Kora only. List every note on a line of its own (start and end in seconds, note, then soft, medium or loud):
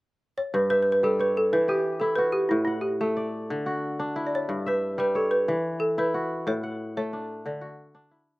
0.54 1.58 G2 medium
0.70 1.74 E5 medium
1.03 1.58 G3 medium
1.19 2.34 C#5 medium
1.53 2.57 E3 medium
1.68 2.24 G4 medium
2.01 3.58 E4 medium
2.18 3.64 F#4 medium
2.51 3.55 A2 medium
2.67 3.64 F#5 medium
3.01 5.00 A3 medium
3.17 4.27 D5 medium
3.50 4.54 D3 medium
3.66 4.55 F#4 medium
3.99 5.21 D4 medium
4.16 5.73 E4 medium
4.49 5.53 G2 medium
4.66 5.70 E5 medium
4.98 5.53 G3 medium
5.15 6.30 C#5 medium
5.48 6.52 E3 medium
5.98 7.55 E4 medium
6.14 7.60 F#4 medium
6.47 7.51 A2 medium
6.63 7.60 F#5 medium
6.97 8.40 A3 medium
7.13 7.94 D4 medium
7.46 8.40 D3 medium
7.61 8.40 F#4 medium
7.95 8.40 D4 medium
8.11 8.40 E4 medium